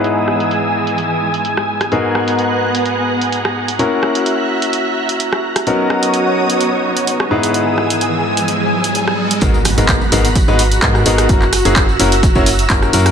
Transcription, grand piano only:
X:1
M:4/4
L:1/16
Q:"Swing 16ths" 1/4=128
K:G#m
V:1 name="Grand piano"
[G,,B,DEGB]16 | [G,,B,DFGA]16 | [A,CEFA]16 | [F,B,CDFA]12- [F,B,CDFA]2 [G,,B,DEGB]2- |
[G,,B,DEGB]16 | [G,,B,DFGA] z2 [G,,B,DFGA]2 z [G,,B,DFGA] z2 [G,,B,DFGB] z2 [G,,B,DFGA]2 [B,DFGA]2 | [A,CEFA] z2 [A,CEFG]2 z [A,CEFA] z2 [A,CEFc] z2 [A,CEFA]2 [A,CEFA]2 |]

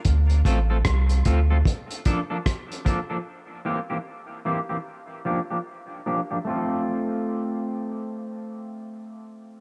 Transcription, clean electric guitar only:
X:1
M:4/4
L:1/16
Q:"Swing 16ths" 1/4=75
K:F
V:1 name="Clean electric guitar"
z2 [A,CFA] [A,CFA] z2 [A,CFA] [A,CFA] z2 [F,B,DA] [F,B,DA] z2 [F,B,DA] [F,B,DA] | z2 [E,B,CG] [E,B,CG] z2 [E,B,CG] [E,B,CG] z2 [F,B,DG] [F,B,DG] z2 [F,B,DG] [F,B,DG] | [A,CFA]16 |]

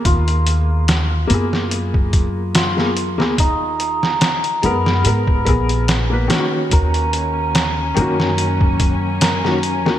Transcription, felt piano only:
X:1
M:4/4
L:1/16
Q:"Swing 16ths" 1/4=72
K:Abdor
V:1 name="Felt piano"
[B,CA]6 [B,CA]6- [B,CA] [B,CA] z [B,CA] | z6 [A,CB]2 [A,CB]2 [CAB]3 [B,Cc] [E,B,DG]2- | [E,B,DG]6 [E,B,DG]6- [E,B,DG] [E,B,DG] z [E,B,DG] |]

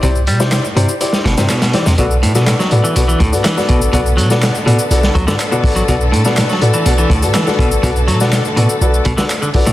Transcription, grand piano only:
X:1
M:4/4
L:1/16
Q:1/4=123
K:Bphr
V:1 name="Grand piano"
[EGcd] z2 [EGcd]2 z [EGcd] z [EGcd]2 z [EGcd] z2 [EGcd] z | [FABd] z2 [FABd]2 z [FABd] z [FABd]2 z [FABd] z [FABd]3 | [FABd] z2 [FABd]2 z [FABd] z [FABd]2 z [FABd] z [FABd]3 | [FABd] z2 [FABd]2 z [FABd] z [FABd]2 z [FABd] z [FABd]3 |
[FABd] z2 [FABd]2 z [FABd] z [FABd]2 z [FABd] z2 [FABd] z |]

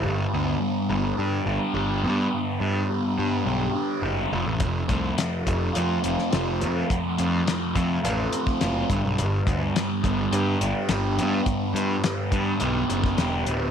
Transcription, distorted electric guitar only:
X:1
M:4/4
L:1/8
Q:1/4=105
K:G
V:1 name="Distorted electric guitar"
G,, B, G, B, G D G B, | G,, B, G, B, G D G =F,, | =F,, A, =F, A, =F C F A, | =F,, A, =F, A, =F C F G,, |
G,, B, G, B, G D G B, | G,, B, G, B, G D G B, |]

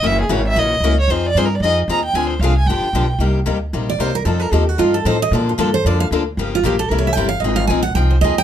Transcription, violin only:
X:1
M:4/4
L:1/16
Q:"Swing" 1/4=227
K:Cm
V:1 name="Violin"
=e2 ^G2 ^c2 e2 ^d6 c2 | c2 d2 (3c2 B2 d2 e2 z2 b2 g2 | a2 c2 f2 a2 g6- g z | z16 |
z16 | z16 | z16 | z16 |]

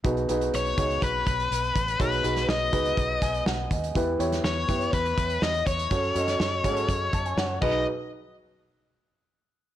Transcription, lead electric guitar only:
X:1
M:4/4
L:1/8
Q:1/4=123
K:Bmix
V:1 name="Lead electric guitar"
z2 c2 B4 | B2 d4 z2 | z2 c2 B2 d c- | c6- c d |
z8 |]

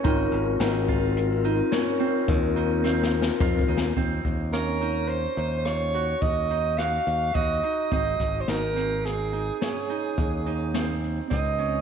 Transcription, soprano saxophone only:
X:1
M:7/4
L:1/16
Q:1/4=106
K:Ebdor
V:1 name="Soprano saxophone"
z24 z4 | z4 B4 c4 d4 e4 f4 e4 | e3- e/2 c/2 B4 A12- A2 z2 e4 |]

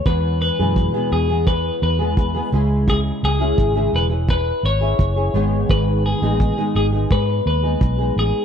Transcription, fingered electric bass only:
X:1
M:4/4
L:1/16
Q:1/4=85
K:G#phr
V:1 name="Fingered electric bass" clef=bass
E,,3 F,,2 z E,,4 E,,4 C,,2- | C,,2 C,,2 G,,,2 E,,,4 G,,,2 F,,,2 G,,,2 | G,,,3 A,,,2 z G,,,2 G,,2 D,,2 B,,,2 A,,, z |]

